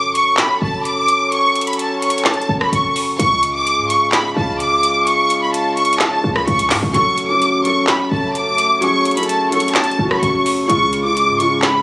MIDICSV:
0, 0, Header, 1, 6, 480
1, 0, Start_track
1, 0, Key_signature, 3, "minor"
1, 0, Tempo, 468750
1, 1351, Time_signature, 4, 2, 24, 8
1, 12108, End_track
2, 0, Start_track
2, 0, Title_t, "Violin section"
2, 0, Program_c, 0, 48
2, 0, Note_on_c, 0, 86, 88
2, 131, Note_off_c, 0, 86, 0
2, 153, Note_on_c, 0, 85, 91
2, 375, Note_off_c, 0, 85, 0
2, 394, Note_on_c, 0, 83, 87
2, 615, Note_off_c, 0, 83, 0
2, 637, Note_on_c, 0, 81, 85
2, 857, Note_off_c, 0, 81, 0
2, 869, Note_on_c, 0, 86, 93
2, 1321, Note_off_c, 0, 86, 0
2, 1358, Note_on_c, 0, 85, 107
2, 1693, Note_off_c, 0, 85, 0
2, 1715, Note_on_c, 0, 83, 74
2, 1824, Note_off_c, 0, 83, 0
2, 1838, Note_on_c, 0, 81, 82
2, 2058, Note_off_c, 0, 81, 0
2, 2067, Note_on_c, 0, 85, 79
2, 2291, Note_off_c, 0, 85, 0
2, 2309, Note_on_c, 0, 81, 96
2, 2648, Note_off_c, 0, 81, 0
2, 2678, Note_on_c, 0, 83, 74
2, 2786, Note_off_c, 0, 83, 0
2, 2786, Note_on_c, 0, 85, 79
2, 3011, Note_off_c, 0, 85, 0
2, 3263, Note_on_c, 0, 85, 105
2, 3605, Note_off_c, 0, 85, 0
2, 3636, Note_on_c, 0, 86, 94
2, 3972, Note_off_c, 0, 86, 0
2, 3990, Note_on_c, 0, 85, 86
2, 4213, Note_off_c, 0, 85, 0
2, 4230, Note_on_c, 0, 83, 88
2, 4453, Note_off_c, 0, 83, 0
2, 4477, Note_on_c, 0, 81, 86
2, 4697, Note_off_c, 0, 81, 0
2, 4709, Note_on_c, 0, 86, 97
2, 5161, Note_off_c, 0, 86, 0
2, 5197, Note_on_c, 0, 85, 100
2, 5533, Note_off_c, 0, 85, 0
2, 5554, Note_on_c, 0, 83, 76
2, 5664, Note_off_c, 0, 83, 0
2, 5675, Note_on_c, 0, 81, 84
2, 5896, Note_off_c, 0, 81, 0
2, 5908, Note_on_c, 0, 85, 90
2, 6132, Note_off_c, 0, 85, 0
2, 6142, Note_on_c, 0, 81, 88
2, 6485, Note_off_c, 0, 81, 0
2, 6509, Note_on_c, 0, 83, 76
2, 6621, Note_off_c, 0, 83, 0
2, 6632, Note_on_c, 0, 85, 86
2, 6854, Note_off_c, 0, 85, 0
2, 7111, Note_on_c, 0, 85, 110
2, 7449, Note_off_c, 0, 85, 0
2, 7472, Note_on_c, 0, 86, 88
2, 7810, Note_off_c, 0, 86, 0
2, 7831, Note_on_c, 0, 85, 91
2, 8054, Note_off_c, 0, 85, 0
2, 8071, Note_on_c, 0, 83, 87
2, 8294, Note_off_c, 0, 83, 0
2, 8316, Note_on_c, 0, 81, 82
2, 8536, Note_off_c, 0, 81, 0
2, 8547, Note_on_c, 0, 86, 95
2, 9000, Note_off_c, 0, 86, 0
2, 9037, Note_on_c, 0, 85, 103
2, 9373, Note_off_c, 0, 85, 0
2, 9394, Note_on_c, 0, 83, 73
2, 9504, Note_off_c, 0, 83, 0
2, 9517, Note_on_c, 0, 81, 82
2, 9737, Note_off_c, 0, 81, 0
2, 9746, Note_on_c, 0, 85, 81
2, 9971, Note_off_c, 0, 85, 0
2, 9986, Note_on_c, 0, 81, 95
2, 10326, Note_off_c, 0, 81, 0
2, 10356, Note_on_c, 0, 83, 74
2, 10465, Note_off_c, 0, 83, 0
2, 10465, Note_on_c, 0, 85, 79
2, 10690, Note_off_c, 0, 85, 0
2, 10945, Note_on_c, 0, 85, 106
2, 11286, Note_off_c, 0, 85, 0
2, 11318, Note_on_c, 0, 86, 93
2, 11653, Note_off_c, 0, 86, 0
2, 11670, Note_on_c, 0, 85, 83
2, 11893, Note_off_c, 0, 85, 0
2, 11905, Note_on_c, 0, 83, 88
2, 12108, Note_off_c, 0, 83, 0
2, 12108, End_track
3, 0, Start_track
3, 0, Title_t, "Felt piano"
3, 0, Program_c, 1, 0
3, 7101, Note_on_c, 1, 54, 100
3, 7114, Note_on_c, 1, 61, 89
3, 7128, Note_on_c, 1, 69, 110
3, 7288, Control_c, 1, 64, 127
3, 7440, Note_off_c, 1, 54, 0
3, 7447, Note_off_c, 1, 61, 0
3, 7454, Note_off_c, 1, 69, 0
3, 7460, Note_on_c, 1, 54, 78
3, 7474, Note_on_c, 1, 61, 76
3, 7487, Note_on_c, 1, 69, 82
3, 7799, Note_off_c, 1, 54, 0
3, 7806, Note_off_c, 1, 61, 0
3, 7813, Note_off_c, 1, 69, 0
3, 7821, Note_on_c, 1, 54, 76
3, 7835, Note_on_c, 1, 61, 69
3, 7848, Note_on_c, 1, 69, 88
3, 8717, Note_off_c, 1, 54, 0
3, 8724, Note_off_c, 1, 61, 0
3, 8731, Note_off_c, 1, 69, 0
3, 9020, Note_on_c, 1, 54, 104
3, 9034, Note_on_c, 1, 61, 94
3, 9048, Note_on_c, 1, 68, 112
3, 9360, Note_off_c, 1, 54, 0
3, 9367, Note_off_c, 1, 61, 0
3, 9373, Note_off_c, 1, 68, 0
3, 9376, Note_on_c, 1, 54, 78
3, 9390, Note_on_c, 1, 61, 70
3, 9404, Note_on_c, 1, 69, 85
3, 9718, Note_off_c, 1, 54, 0
3, 9725, Note_off_c, 1, 61, 0
3, 9732, Note_off_c, 1, 69, 0
3, 9734, Note_on_c, 1, 54, 82
3, 9747, Note_on_c, 1, 61, 72
3, 9761, Note_on_c, 1, 69, 93
3, 10188, Note_off_c, 1, 54, 0
3, 10195, Note_off_c, 1, 61, 0
3, 10202, Note_off_c, 1, 69, 0
3, 10224, Note_on_c, 1, 54, 78
3, 10237, Note_on_c, 1, 61, 76
3, 10251, Note_on_c, 1, 66, 86
3, 10896, Note_off_c, 1, 54, 0
3, 10903, Note_off_c, 1, 61, 0
3, 10910, Note_off_c, 1, 66, 0
3, 10938, Note_on_c, 1, 49, 105
3, 10951, Note_on_c, 1, 56, 101
3, 10965, Control_c, 1, 64, 0
3, 10965, Note_on_c, 1, 65, 114
3, 11153, Control_c, 1, 64, 127
3, 11279, Note_off_c, 1, 49, 0
3, 11285, Note_off_c, 1, 56, 0
3, 11292, Note_off_c, 1, 65, 0
3, 11302, Note_on_c, 1, 49, 83
3, 11316, Note_on_c, 1, 56, 70
3, 11330, Note_on_c, 1, 65, 89
3, 11641, Note_off_c, 1, 49, 0
3, 11648, Note_off_c, 1, 56, 0
3, 11654, Note_off_c, 1, 65, 0
3, 11663, Note_on_c, 1, 49, 80
3, 11677, Note_on_c, 1, 56, 71
3, 11691, Note_on_c, 1, 65, 88
3, 12108, Note_off_c, 1, 49, 0
3, 12108, Note_off_c, 1, 56, 0
3, 12108, Note_off_c, 1, 65, 0
3, 12108, End_track
4, 0, Start_track
4, 0, Title_t, "French horn section"
4, 0, Program_c, 2, 60
4, 0, Note_on_c, 2, 54, 82
4, 0, Note_on_c, 2, 61, 75
4, 0, Note_on_c, 2, 69, 89
4, 3232, Note_off_c, 2, 54, 0
4, 3232, Note_off_c, 2, 61, 0
4, 3232, Note_off_c, 2, 69, 0
4, 3273, Note_on_c, 2, 56, 74
4, 3275, Note_on_c, 2, 49, 84
4, 3275, Note_on_c, 2, 65, 91
4, 7074, Note_off_c, 2, 49, 0
4, 7074, Note_off_c, 2, 56, 0
4, 7075, Note_off_c, 2, 65, 0
4, 7109, Note_on_c, 2, 57, 93
4, 7110, Note_on_c, 2, 54, 84
4, 7110, Note_on_c, 2, 61, 77
4, 10912, Note_off_c, 2, 54, 0
4, 10912, Note_off_c, 2, 57, 0
4, 10912, Note_off_c, 2, 61, 0
4, 10951, Note_on_c, 2, 56, 76
4, 10952, Note_on_c, 2, 49, 79
4, 10952, Note_on_c, 2, 65, 89
4, 12108, Note_off_c, 2, 49, 0
4, 12108, Note_off_c, 2, 56, 0
4, 12108, Note_off_c, 2, 65, 0
4, 12108, End_track
5, 0, Start_track
5, 0, Title_t, "808-style bass"
5, 0, Program_c, 3, 38
5, 32, Note_on_c, 3, 32, 101
5, 332, Note_on_c, 3, 30, 102
5, 347, Note_off_c, 3, 32, 0
5, 616, Note_off_c, 3, 30, 0
5, 632, Note_on_c, 3, 30, 104
5, 1438, Note_off_c, 3, 30, 0
5, 2552, Note_on_c, 3, 30, 109
5, 2782, Note_off_c, 3, 30, 0
5, 2791, Note_on_c, 3, 30, 108
5, 3252, Note_off_c, 3, 30, 0
5, 3271, Note_on_c, 3, 37, 108
5, 3871, Note_on_c, 3, 44, 98
5, 3887, Note_off_c, 3, 37, 0
5, 4441, Note_off_c, 3, 44, 0
5, 4470, Note_on_c, 3, 37, 104
5, 5277, Note_off_c, 3, 37, 0
5, 6390, Note_on_c, 3, 37, 106
5, 6621, Note_off_c, 3, 37, 0
5, 6630, Note_on_c, 3, 37, 110
5, 6871, Note_on_c, 3, 44, 99
5, 6886, Note_off_c, 3, 37, 0
5, 6985, Note_off_c, 3, 44, 0
5, 6990, Note_on_c, 3, 37, 101
5, 7104, Note_off_c, 3, 37, 0
5, 7110, Note_on_c, 3, 30, 106
5, 7711, Note_on_c, 3, 32, 102
5, 7726, Note_off_c, 3, 30, 0
5, 8011, Note_on_c, 3, 30, 103
5, 8026, Note_off_c, 3, 32, 0
5, 8296, Note_off_c, 3, 30, 0
5, 8310, Note_on_c, 3, 30, 108
5, 9117, Note_off_c, 3, 30, 0
5, 10231, Note_on_c, 3, 30, 107
5, 10461, Note_off_c, 3, 30, 0
5, 10471, Note_on_c, 3, 30, 111
5, 10932, Note_off_c, 3, 30, 0
5, 10950, Note_on_c, 3, 37, 108
5, 11550, Note_on_c, 3, 44, 101
5, 11566, Note_off_c, 3, 37, 0
5, 12108, Note_off_c, 3, 44, 0
5, 12108, End_track
6, 0, Start_track
6, 0, Title_t, "Drums"
6, 155, Note_on_c, 9, 42, 76
6, 257, Note_off_c, 9, 42, 0
6, 385, Note_on_c, 9, 39, 100
6, 391, Note_on_c, 9, 38, 118
6, 392, Note_on_c, 9, 42, 72
6, 487, Note_off_c, 9, 39, 0
6, 493, Note_off_c, 9, 38, 0
6, 495, Note_off_c, 9, 42, 0
6, 874, Note_on_c, 9, 42, 75
6, 976, Note_off_c, 9, 42, 0
6, 1110, Note_on_c, 9, 42, 85
6, 1212, Note_off_c, 9, 42, 0
6, 1352, Note_on_c, 9, 42, 76
6, 1455, Note_off_c, 9, 42, 0
6, 1592, Note_on_c, 9, 42, 71
6, 1652, Note_off_c, 9, 42, 0
6, 1652, Note_on_c, 9, 42, 71
6, 1712, Note_off_c, 9, 42, 0
6, 1712, Note_on_c, 9, 42, 70
6, 1772, Note_off_c, 9, 42, 0
6, 1772, Note_on_c, 9, 42, 69
6, 1836, Note_off_c, 9, 42, 0
6, 1836, Note_on_c, 9, 42, 77
6, 1938, Note_off_c, 9, 42, 0
6, 2072, Note_on_c, 9, 42, 77
6, 2152, Note_off_c, 9, 42, 0
6, 2152, Note_on_c, 9, 42, 71
6, 2232, Note_off_c, 9, 42, 0
6, 2232, Note_on_c, 9, 42, 66
6, 2305, Note_on_c, 9, 39, 94
6, 2311, Note_on_c, 9, 38, 120
6, 2312, Note_off_c, 9, 42, 0
6, 2312, Note_on_c, 9, 42, 61
6, 2393, Note_off_c, 9, 42, 0
6, 2393, Note_on_c, 9, 42, 55
6, 2408, Note_off_c, 9, 39, 0
6, 2414, Note_off_c, 9, 38, 0
6, 2473, Note_off_c, 9, 42, 0
6, 2473, Note_on_c, 9, 42, 46
6, 2576, Note_off_c, 9, 42, 0
6, 2673, Note_on_c, 9, 37, 99
6, 2775, Note_off_c, 9, 37, 0
6, 2794, Note_on_c, 9, 42, 77
6, 2896, Note_off_c, 9, 42, 0
6, 3030, Note_on_c, 9, 46, 87
6, 3133, Note_off_c, 9, 46, 0
6, 3272, Note_on_c, 9, 42, 81
6, 3375, Note_off_c, 9, 42, 0
6, 3511, Note_on_c, 9, 42, 82
6, 3613, Note_off_c, 9, 42, 0
6, 3756, Note_on_c, 9, 42, 76
6, 3858, Note_off_c, 9, 42, 0
6, 3994, Note_on_c, 9, 42, 78
6, 4097, Note_off_c, 9, 42, 0
6, 4224, Note_on_c, 9, 39, 98
6, 4230, Note_on_c, 9, 38, 118
6, 4232, Note_on_c, 9, 42, 70
6, 4327, Note_off_c, 9, 39, 0
6, 4333, Note_off_c, 9, 38, 0
6, 4334, Note_off_c, 9, 42, 0
6, 4712, Note_on_c, 9, 42, 78
6, 4815, Note_off_c, 9, 42, 0
6, 4949, Note_on_c, 9, 42, 90
6, 5051, Note_off_c, 9, 42, 0
6, 5190, Note_on_c, 9, 42, 79
6, 5293, Note_off_c, 9, 42, 0
6, 5429, Note_on_c, 9, 42, 84
6, 5531, Note_off_c, 9, 42, 0
6, 5674, Note_on_c, 9, 42, 76
6, 5776, Note_off_c, 9, 42, 0
6, 5910, Note_on_c, 9, 42, 46
6, 5990, Note_off_c, 9, 42, 0
6, 5990, Note_on_c, 9, 42, 66
6, 6070, Note_off_c, 9, 42, 0
6, 6070, Note_on_c, 9, 42, 80
6, 6143, Note_on_c, 9, 39, 94
6, 6149, Note_on_c, 9, 38, 123
6, 6151, Note_off_c, 9, 42, 0
6, 6151, Note_on_c, 9, 42, 71
6, 6246, Note_off_c, 9, 39, 0
6, 6252, Note_off_c, 9, 38, 0
6, 6253, Note_off_c, 9, 42, 0
6, 6509, Note_on_c, 9, 37, 97
6, 6612, Note_off_c, 9, 37, 0
6, 6631, Note_on_c, 9, 42, 49
6, 6733, Note_off_c, 9, 42, 0
6, 6751, Note_on_c, 9, 42, 83
6, 6853, Note_off_c, 9, 42, 0
6, 6864, Note_on_c, 9, 39, 76
6, 6868, Note_on_c, 9, 46, 86
6, 6871, Note_on_c, 9, 38, 94
6, 6967, Note_off_c, 9, 39, 0
6, 6971, Note_off_c, 9, 46, 0
6, 6973, Note_off_c, 9, 38, 0
6, 7111, Note_on_c, 9, 42, 76
6, 7213, Note_off_c, 9, 42, 0
6, 7348, Note_on_c, 9, 42, 84
6, 7451, Note_off_c, 9, 42, 0
6, 7595, Note_on_c, 9, 42, 78
6, 7697, Note_off_c, 9, 42, 0
6, 7834, Note_on_c, 9, 42, 77
6, 7936, Note_off_c, 9, 42, 0
6, 8064, Note_on_c, 9, 39, 98
6, 8070, Note_on_c, 9, 38, 118
6, 8072, Note_on_c, 9, 42, 70
6, 8166, Note_off_c, 9, 39, 0
6, 8173, Note_off_c, 9, 38, 0
6, 8174, Note_off_c, 9, 42, 0
6, 8552, Note_on_c, 9, 42, 76
6, 8655, Note_off_c, 9, 42, 0
6, 8789, Note_on_c, 9, 42, 90
6, 8891, Note_off_c, 9, 42, 0
6, 9031, Note_on_c, 9, 42, 76
6, 9134, Note_off_c, 9, 42, 0
6, 9271, Note_on_c, 9, 42, 71
6, 9331, Note_off_c, 9, 42, 0
6, 9331, Note_on_c, 9, 42, 72
6, 9391, Note_off_c, 9, 42, 0
6, 9391, Note_on_c, 9, 42, 68
6, 9452, Note_off_c, 9, 42, 0
6, 9452, Note_on_c, 9, 42, 71
6, 9516, Note_off_c, 9, 42, 0
6, 9516, Note_on_c, 9, 42, 75
6, 9618, Note_off_c, 9, 42, 0
6, 9752, Note_on_c, 9, 42, 76
6, 9832, Note_off_c, 9, 42, 0
6, 9832, Note_on_c, 9, 42, 71
6, 9913, Note_off_c, 9, 42, 0
6, 9913, Note_on_c, 9, 42, 67
6, 9985, Note_on_c, 9, 39, 96
6, 9991, Note_off_c, 9, 42, 0
6, 9991, Note_on_c, 9, 38, 119
6, 9991, Note_on_c, 9, 42, 61
6, 10072, Note_off_c, 9, 42, 0
6, 10072, Note_on_c, 9, 42, 56
6, 10087, Note_off_c, 9, 39, 0
6, 10093, Note_off_c, 9, 38, 0
6, 10152, Note_off_c, 9, 42, 0
6, 10152, Note_on_c, 9, 42, 48
6, 10254, Note_off_c, 9, 42, 0
6, 10352, Note_on_c, 9, 37, 101
6, 10454, Note_off_c, 9, 37, 0
6, 10474, Note_on_c, 9, 42, 75
6, 10576, Note_off_c, 9, 42, 0
6, 10710, Note_on_c, 9, 46, 88
6, 10812, Note_off_c, 9, 46, 0
6, 10952, Note_on_c, 9, 42, 78
6, 11054, Note_off_c, 9, 42, 0
6, 11191, Note_on_c, 9, 42, 83
6, 11293, Note_off_c, 9, 42, 0
6, 11436, Note_on_c, 9, 42, 76
6, 11538, Note_off_c, 9, 42, 0
6, 11674, Note_on_c, 9, 42, 79
6, 11777, Note_off_c, 9, 42, 0
6, 11905, Note_on_c, 9, 39, 97
6, 11911, Note_on_c, 9, 38, 122
6, 11912, Note_on_c, 9, 42, 71
6, 12007, Note_off_c, 9, 39, 0
6, 12013, Note_off_c, 9, 38, 0
6, 12015, Note_off_c, 9, 42, 0
6, 12108, End_track
0, 0, End_of_file